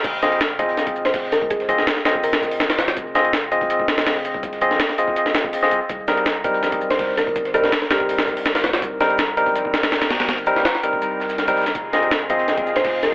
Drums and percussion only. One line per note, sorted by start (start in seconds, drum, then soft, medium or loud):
0.04 kick loud
0.04 closed hi-hat medium
0.04 crash medium
0.04 shaker medium
0.23 snare medium
0.23 closed hi-hat medium
0.23 shaker medium
0.32 closed hi-hat soft
0.41 snare loud
0.41 closed hi-hat medium
0.41 shaker medium
0.59 kick loud
0.59 closed hi-hat medium
0.59 shaker medium
0.69 closed hi-hat soft
0.77 snare soft
0.77 closed hi-hat medium
0.77 shaker medium
0.87 kick loud
0.87 closed hi-hat medium
0.96 shaker medium
1.05 snare soft
1.05 closed hi-hat medium
1.05 closed hi-hat soft
1.14 kick loud
1.14 snare loud
1.14 closed hi-hat medium
1.14 open hi-hat medium
1.23 snare medium
1.32 snare soft
1.32 closed hi-hat medium
1.32 shaker medium
1.42 kick loud
1.42 closed hi-hat soft
1.50 kick loud
1.50 closed hi-hat medium
1.50 shaker medium
1.60 snare soft
1.60 closed hi-hat soft
1.69 kick medium
1.69 closed hi-hat medium
1.69 shaker medium
1.78 snare medium
1.87 snare loud
1.87 closed hi-hat medium
1.87 shaker loud
1.97 snare soft
2.05 snare loud
2.05 closed hi-hat medium
2.05 shaker medium
2.15 kick medium
2.23 open hi-hat medium
2.23 shaker medium
2.33 snare loud
2.33 closed hi-hat medium
2.42 kick medium
2.42 snare loud
2.42 shaker medium
2.51 snare soft
2.51 open hi-hat medium
2.60 snare loud
2.60 closed hi-hat medium
2.60 shaker medium
2.70 snare loud
2.70 snare medium
2.70 closed hi-hat medium
2.79 snare loud
2.79 closed hi-hat medium
2.79 shaker medium
2.88 snare loud
2.88 closed hi-hat medium
2.97 kick loud
2.97 closed hi-hat medium
2.97 shaker medium
3.15 snare medium
3.15 closed hi-hat medium
3.15 shaker medium
3.25 closed hi-hat soft
3.33 snare loud
3.33 closed hi-hat medium
3.33 shaker medium
3.52 closed hi-hat medium
3.52 shaker medium
3.61 kick medium
3.61 closed hi-hat soft
3.70 closed hi-hat medium
3.70 shaker medium
3.80 kick loud
3.88 snare loud
3.88 closed hi-hat medium
3.88 shaker medium
3.98 snare loud
3.98 closed hi-hat medium
3.98 closed hi-hat soft
4.06 snare loud
4.06 closed hi-hat medium
4.06 open hi-hat medium
4.16 snare soft
4.25 closed hi-hat medium
4.25 shaker medium
4.34 kick loud
4.34 closed hi-hat soft
4.43 kick loud
4.43 closed hi-hat medium
4.43 shaker medium
4.53 snare soft
4.53 closed hi-hat soft
4.61 kick medium
4.61 closed hi-hat medium
4.61 shaker medium
4.71 snare medium
4.80 snare loud
4.80 closed hi-hat medium
4.80 shaker medium
4.89 snare soft
4.98 closed hi-hat medium
4.98 shaker medium
5.08 kick loud
5.16 closed hi-hat medium
5.16 shaker medium
5.26 snare medium
5.34 snare loud
5.34 closed hi-hat medium
5.34 shaker medium
5.44 kick loud
5.44 snare soft
5.53 open hi-hat medium
5.53 shaker medium
5.63 snare soft
5.63 snare medium
5.71 closed hi-hat medium
5.71 shaker medium
5.89 kick loud
5.89 closed hi-hat medium
5.89 shaker medium
6.07 snare medium
6.07 closed hi-hat medium
6.07 shaker medium
6.17 closed hi-hat soft
6.25 snare loud
6.25 closed hi-hat medium
6.25 shaker medium
6.44 kick loud
6.44 closed hi-hat medium
6.44 shaker medium
6.54 closed hi-hat soft
6.63 snare medium
6.63 closed hi-hat medium
6.63 shaker medium
6.72 kick loud
6.72 closed hi-hat medium
6.81 shaker medium
6.90 snare medium
6.90 closed hi-hat medium
6.90 closed hi-hat soft
6.99 kick loud
6.99 snare loud
6.99 closed hi-hat medium
6.99 open hi-hat medium
7.09 snare soft
7.17 snare soft
7.17 closed hi-hat medium
7.17 shaker medium
7.27 kick loud
7.27 closed hi-hat soft
7.35 kick loud
7.35 closed hi-hat medium
7.35 shaker medium
7.45 snare soft
7.45 closed hi-hat soft
7.54 kick medium
7.54 closed hi-hat medium
7.54 shaker medium
7.64 snare medium
7.72 snare loud
7.72 closed hi-hat medium
7.72 shaker medium
7.82 snare soft
7.90 snare loud
7.90 closed hi-hat medium
7.90 shaker medium
8.00 kick medium
8.09 open hi-hat medium
8.09 shaker medium
8.18 snare loud
8.18 closed hi-hat medium
8.27 kick medium
8.27 snare loud
8.27 shaker medium
8.37 snare soft
8.37 open hi-hat medium
8.45 snare loud
8.45 closed hi-hat medium
8.45 shaker medium
8.55 snare medium
8.55 snare loud
8.55 closed hi-hat medium
8.63 snare loud
8.63 closed hi-hat medium
8.63 shaker medium
8.73 snare loud
8.73 closed hi-hat medium
8.82 kick loud
8.82 closed hi-hat medium
8.82 shaker medium
9.00 snare medium
9.00 closed hi-hat medium
9.00 shaker medium
9.10 closed hi-hat soft
9.18 snare loud
9.18 closed hi-hat medium
9.18 shaker medium
9.37 closed hi-hat medium
9.37 shaker medium
9.46 kick loud
9.46 closed hi-hat soft
9.56 closed hi-hat medium
9.56 shaker medium
9.65 kick loud
9.73 snare loud
9.73 closed hi-hat medium
9.73 shaker medium
9.83 snare loud
9.83 closed hi-hat medium
9.83 closed hi-hat soft
9.92 snare loud
9.92 closed hi-hat medium
9.92 open hi-hat medium
10.02 snare loud
10.02 snare medium
10.02 closed hi-hat medium
10.10 snare loud
10.10 closed hi-hat medium
10.10 shaker medium
10.20 snare loud
10.20 closed hi-hat medium
10.29 snare loud
10.29 closed hi-hat medium
10.29 shaker medium
10.38 snare soft
10.38 closed hi-hat soft
10.46 kick medium
10.46 closed hi-hat medium
10.46 shaker medium
10.56 snare medium
10.65 snare loud
10.65 closed hi-hat medium
10.65 shaker medium
10.75 snare soft
10.83 closed hi-hat medium
10.83 shaker medium
10.93 kick medium
11.02 shaker medium
11.20 snare loud
11.20 shaker medium
11.29 snare loud
11.29 shaker medium
11.38 snare soft
11.38 snare loud
11.38 closed hi-hat medium
11.38 shaker medium
11.47 kick loud
11.47 snare loud
11.47 closed hi-hat medium
11.47 shaker medium
11.56 snare medium
11.56 shaker medium
11.61 snare medium
11.61 shaker medium
11.66 snare soft
11.66 snare loud
11.66 closed hi-hat medium
11.66 shaker medium
11.75 kick loud
11.75 closed hi-hat medium
11.75 shaker medium
11.93 snare medium
11.93 closed hi-hat medium
11.93 shaker medium
12.03 closed hi-hat soft
12.11 snare loud
12.11 closed hi-hat medium
12.11 shaker medium
12.30 kick loud
12.30 closed hi-hat medium
12.30 shaker medium
12.39 closed hi-hat soft
12.48 snare soft
12.48 closed hi-hat medium
12.48 shaker medium
12.57 kick loud
12.57 closed hi-hat medium
12.66 shaker medium
12.76 snare soft
12.76 closed hi-hat soft
12.76 closed hi-hat medium
12.84 kick loud
12.84 snare loud
12.84 closed hi-hat medium
12.84 open hi-hat medium
12.94 snare soft
13.03 snare soft
13.03 closed hi-hat medium
13.03 shaker medium